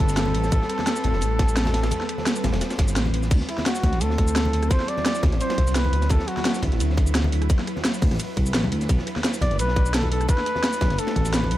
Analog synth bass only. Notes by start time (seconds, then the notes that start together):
0.00 G1
0.35 A1
0.52 A1
1.04 A1
1.13 E1
1.22 A1
2.44 A1
2.53 E1
2.79 G1
2.96 A1
3.31 D2
3.83 D2
3.93 A1
4.01 D2
5.23 D2
5.32 A1
5.58 C2
5.93 D2
6.10 D2
6.63 D2
6.72 A1
6.80 D2
8.02 D2
8.11 A1
8.37 C2
8.54 A1
8.64 C2
8.72 D2
8.89 B1
9.41 B1
9.51 F#1
9.59 B1
10.81 B1
10.90 F#1
11.16 A1
11.51 B1